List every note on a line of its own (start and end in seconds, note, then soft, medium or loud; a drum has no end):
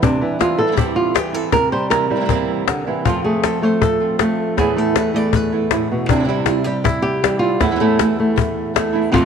0.02 0.21 C3 medium
0.02 0.22 E3 soft
0.02 1.72 G3 soft
0.02 0.40 D4 medium
0.02 muted nylon-string guitar stroke medium
0.02 cajon bass medium
0.21 0.59 E3 medium
0.21 0.58 E4 medium
0.39 0.58 C3 medium
0.39 0.58 E3 medium
0.39 0.58 G3 medium
0.39 0.57 C4 medium
0.39 0.57 E4 medium
0.39 0.59 F4 medium
0.39 cajon slap medium
0.58 1.16 E3 medium
0.58 0.66 G3 soft
0.58 0.67 C4 soft
0.58 0.67 E4 soft
0.58 0.78 A4 medium
0.58 cajon slap soft
0.67 0.71 E3 soft
0.67 0.71 G3 soft
0.67 0.71 C4 soft
0.67 0.72 E4 soft
0.72 0.75 E3 medium
0.72 0.76 G3 medium
0.72 0.76 C4 medium
0.72 0.76 E4 medium
0.76 1.13 C3 medium
0.76 1.13 E3 medium
0.76 1.13 G3 medium
0.76 1.14 C4 medium
0.76 1.14 E4 medium
0.76 1.13 G4 medium
0.76 cajon bass medium
0.96 1.15 F4 medium
1.14 1.52 E3 medium
1.14 1.34 G4 medium
1.14 muted nylon-string guitar stroke soft
1.14 cajon slap loud
1.33 1.53 G3 soft
1.33 1.53 C4 soft
1.33 1.52 E4 soft
1.33 1.52 A4 medium
1.52 3.04 C3 medium
1.52 1.72 A#4 medium
1.52 muted nylon-string guitar stroke medium
1.52 cajon bass medium
1.72 2.09 G3 medium
1.72 1.90 C5 medium
1.90 2.10 C3 medium
1.90 2.10 E3 medium
1.90 2.10 A#3 medium
1.90 2.10 C4 medium
1.90 2.09 E4 medium
1.90 3.05 A#4 medium
1.90 cajon slap medium
2.10 2.67 G3 medium
2.10 2.15 A#3 soft
2.10 2.15 C4 soft
2.10 2.16 E4 soft
2.10 cajon slap soft
2.16 2.19 E3 soft
2.16 2.20 A#3 soft
2.16 2.20 C4 soft
2.16 2.21 E4 soft
2.20 2.24 E3 soft
2.20 2.24 A#3 medium
2.20 2.25 C4 soft
2.20 2.25 E4 medium
2.25 2.29 E3 medium
2.25 2.29 A#3 medium
2.25 2.29 C4 medium
2.25 2.30 E4 medium
2.29 2.66 C3 medium
2.29 2.66 E3 medium
2.29 2.67 A#3 medium
2.29 2.67 C4 medium
2.29 2.67 E4 medium
2.29 cajon bass medium
2.67 2.87 D3 medium
2.67 muted nylon-string guitar stroke soft
2.67 cajon slap medium
2.87 3.06 E3 medium
2.87 3.06 A#3 soft
2.87 3.06 C4 soft
2.87 3.05 E4 soft
2.87 cajon slap soft
3.05 3.43 F2 medium
3.05 3.43 C3 medium
3.05 3.42 F3 medium
3.05 4.56 F3 medium
3.05 3.44 A3 medium
3.05 3.44 C4 medium
3.05 3.24 F4 medium
3.05 3.44 F4 medium
3.05 cajon bass medium
3.24 3.62 A3 medium
3.24 3.44 G#4 medium
3.44 3.62 F3 soft
3.44 3.62 A3 soft
3.44 3.63 C4 soft
3.44 3.62 F4 soft
3.44 3.80 A4 medium
3.44 cajon slap medium
3.62 3.82 F3 soft
3.62 4.18 A3 medium
3.62 3.82 A3 soft
3.62 3.82 C4 soft
3.62 3.81 F4 soft
3.62 4.20 C5 medium
3.81 4.38 A4 medium
3.81 muted nylon-string guitar stroke medium
3.81 cajon bass medium
4.00 4.20 F3 soft
4.00 4.19 A3 soft
4.00 4.19 C4 soft
4.00 4.19 F4 soft
4.19 4.58 F3 soft
4.19 4.55 A3 medium
4.19 4.57 A3 soft
4.19 4.57 C4 soft
4.19 4.57 F4 soft
4.19 cajon slap medium
4.57 6.09 E2 medium
4.57 4.95 E2 medium
4.57 4.95 A2 medium
4.57 4.94 E3 medium
4.57 4.95 A3 medium
4.57 4.95 B3 medium
4.57 4.96 E4 medium
4.57 4.78 G#4 medium
4.57 cajon bass medium
4.57 cajon slap soft
4.77 5.13 A3 medium
4.77 5.34 A4 medium
4.95 5.13 E3 soft
4.95 5.14 A3 soft
4.95 5.13 B3 soft
4.95 5.13 E4 soft
4.95 5.16 B4 medium
4.95 cajon slap medium
5.14 5.32 E3 soft
5.14 6.07 A3 medium
5.14 5.33 A3 soft
5.14 5.33 B3 soft
5.14 5.32 E4 soft
5.14 5.35 D5 medium
5.33 5.91 B4 medium
5.33 muted nylon-string guitar stroke medium
5.33 cajon bass medium
5.52 5.71 E3 soft
5.52 5.71 A3 soft
5.52 5.71 B3 soft
5.52 5.70 E4 soft
5.71 5.91 A2 medium
5.71 6.08 E3 soft
5.71 6.09 A3 soft
5.71 6.09 B3 soft
5.71 6.09 E4 soft
5.71 cajon slap loud
5.91 6.10 B2 medium
6.09 6.27 C3 medium
6.09 7.59 C3 medium
6.09 6.14 E3 medium
6.09 6.14 G3 medium
6.09 6.14 C4 medium
6.09 6.28 D4 medium
6.09 6.15 E4 medium
6.09 cajon bass loud
6.15 6.18 E3 soft
6.15 6.19 G3 soft
6.15 6.19 C4 soft
6.15 6.19 E4 soft
6.19 6.23 E3 soft
6.19 6.23 G3 soft
6.19 6.24 C4 soft
6.19 6.24 E4 medium
6.24 6.27 E3 soft
6.24 6.28 G3 medium
6.24 6.28 C4 medium
6.24 6.28 E4 medium
6.24 6.83 E4 medium
6.28 6.47 C3 medium
6.28 6.47 E3 medium
6.28 6.66 G3 medium
6.28 6.47 G3 medium
6.28 6.47 C4 medium
6.28 6.46 E4 medium
6.46 6.84 G3 soft
6.46 6.85 C4 soft
6.46 6.84 E4 soft
6.46 6.64 F4 medium
6.46 cajon slap medium
6.64 7.23 G3 medium
6.64 7.01 G4 loud
6.84 7.42 E4 medium
6.84 muted nylon-string guitar stroke medium
6.84 cajon bass loud
7.02 7.39 G4 loud
7.22 7.41 E3 soft
7.22 7.41 G3 soft
7.22 7.62 G3 medium
7.22 7.42 C4 soft
7.22 7.40 E4 soft
7.22 cajon slap loud
7.39 7.61 C4 soft
7.39 7.60 E4 soft
7.39 7.60 F4 medium
7.44 7.61 G3 soft
7.60 7.79 E2 medium
7.60 9.11 E2 medium
7.60 7.70 A2 medium
7.60 7.70 E3 medium
7.60 7.71 A3 medium
7.60 7.71 B3 medium
7.60 8.94 E4 medium
7.60 7.71 E4 medium
7.60 cajon bass loud
7.60 cajon slap soft
7.71 7.74 A2 soft
7.71 7.75 E3 soft
7.71 7.75 A3 soft
7.71 7.75 B3 soft
7.71 7.75 E4 soft
7.76 7.79 A2 medium
7.76 7.79 E3 medium
7.76 7.79 A3 medium
7.76 7.80 B3 medium
7.76 7.80 E4 medium
7.80 7.98 E2 medium
7.80 7.98 A2 medium
7.80 7.98 E3 medium
7.80 7.99 A3 medium
7.80 7.98 B3 medium
7.80 7.98 E4 medium
7.99 8.35 E3 soft
7.99 8.35 A3 soft
7.99 8.19 A3 soft
7.99 8.36 B3 soft
7.99 8.36 E4 soft
7.99 cajon slap loud
8.19 8.75 A3 medium
8.19 cajon slap soft
8.36 muted nylon-string guitar stroke medium
8.36 cajon bass loud
8.74 8.93 E3 soft
8.74 8.93 A3 soft
8.74 9.11 A3 medium
8.74 8.92 B3 soft
8.74 8.91 E4 medium
8.74 cajon slap loud
8.93 9.13 E3 soft
8.93 9.12 A3 soft
8.93 9.12 B3 soft
8.93 9.12 E4 soft
8.93 9.11 E4 medium
8.93 cajon slap soft
9.12 9.25 F2 medium
9.12 9.25 C3 medium
9.12 9.25 F3 medium
9.12 9.25 A3 medium
9.12 9.25 C4 medium
9.12 9.25 F4 medium
9.12 cajon bass loud